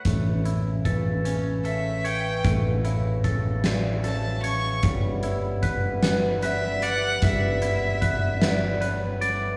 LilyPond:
<<
  \new Staff \with { instrumentName = "Violin" } { \time 6/8 \key a \mixolydian \tempo 4. = 50 r2 e''8 g''8 | r2 a''8 cis'''8 | r2 e''8 fis''8 | e''2 r4 | }
  \new Staff \with { instrumentName = "Vibraphone" } { \time 6/8 \key a \mixolydian cis''4 b'4 cis''8 b'8~ | b'8 cis''4 d''8 cis''4 | cis''4 b'4 d''8 b'8~ | b'8 r4 d''8 cis''4 | }
  \new Staff \with { instrumentName = "Clean electric guitar" } { \time 6/8 \key a \mixolydian a8 e'8 a'8 cis'8 a'8 cis''8 | a8 e'8 a'4 a'8 cis''8 | g8 e'8 b'8 b8 b'8 d''8 | g8 e'8 b'8 b8 b'8 d''8 | }
  \new Staff \with { instrumentName = "Harmonium" } { \time 6/8 \key a \mixolydian e'2. | fis'2. | e'2.~ | e'2. | }
  \new Staff \with { instrumentName = "Harmonium" } { \clef bass \time 6/8 \key a \mixolydian <cis e a>2.~ | <cis e a>2. | <d g b>2.~ | <d g b>2. | }
  \new Staff \with { instrumentName = "Fingered electric bass" } { \clef bass \time 6/8 \key a \mixolydian a,,2. | a,,2. | g,,2. | g,,2. | }
  \new DrumStaff \with { instrumentName = "Drums" } \drummode { \time 6/8 <hh bd>8 hh8 <hh bd>8 hh8 hh8 hh8 | <hh bd>8 hh8 <hh bd>8 <hh sn>8 hh8 hh8 | <hh bd>8 hh8 <hh bd>8 <hh sn>8 hh8 hh8 | <hh bd>8 hh8 <hh bd>8 <hh sn>8 hh8 hh8 | }
>>